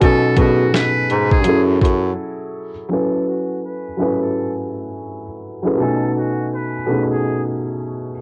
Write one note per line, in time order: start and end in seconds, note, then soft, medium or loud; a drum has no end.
0.01 0.32 B2 medium
0.01 0.33 B2 medium
0.01 0.33 F#3 medium
0.01 0.33 C#4 medium
0.01 0.34 D#4 medium
0.01 0.35 A4 medium
0.01 0.34 G#5 medium
0.01 kick loud
0.01 closed hi-hat medium
0.06 0.35 A4 medium
0.36 1.45 B2 medium
0.36 0.68 B2 medium
0.36 1.43 F#3 medium
0.36 1.44 C#4 medium
0.36 1.47 D#4 medium
0.36 0.71 F#4 medium
0.36 1.46 G#4 medium
0.36 kick medium
0.36 closed hi-hat medium
0.41 1.47 A4 medium
0.74 1.28 B4 medium
0.74 snare loud
0.74 closed hi-hat medium
1.10 1.48 G#2 medium
1.10 closed hi-hat medium
1.31 1.64 G#4 medium
1.31 kick medium
1.44 1.77 F#2 loud
1.44 2.70 F#3 medium
1.44 2.70 C#4 medium
1.44 2.71 E4 medium
1.44 2.71 G#4 medium
1.44 closed hi-hat medium
1.49 2.72 A4 medium
1.81 2.13 F#2 medium
1.81 kick medium
1.81 closed hi-hat medium
2.89 3.84 F#3 medium
2.89 3.84 C#4 medium
2.89 3.85 E4 medium
2.89 3.24 A4 medium
2.89 3.86 A4 medium
2.89 3.85 G#5 medium
2.93 3.86 B4 medium
3.28 3.60 F#4 medium
3.65 4.24 B4 medium
3.97 5.22 F#3 medium
3.97 5.23 C#4 medium
3.97 5.23 E4 medium
3.97 5.24 A4 medium
3.97 5.24 G#5 medium
4.02 5.25 B4 medium
4.22 4.53 A4 medium
5.62 5.76 F#3 medium
5.62 5.77 C#4 medium
5.62 5.77 E4 medium
5.62 5.77 G#4 medium
5.62 5.78 A4 medium
5.67 5.78 B4 medium
5.77 6.73 B2 medium
5.77 6.73 A3 medium
5.77 6.74 C#4 medium
5.77 6.74 D#4 medium
5.81 6.13 A4 medium
5.81 6.75 G#5 medium
6.18 6.49 F#4 medium
6.55 7.07 B4 medium
6.86 8.12 B2 medium
6.86 8.12 A3 medium
6.86 8.13 C#4 medium
6.86 8.13 D#4 medium
6.91 8.14 G#4 medium
7.12 7.43 G#4 medium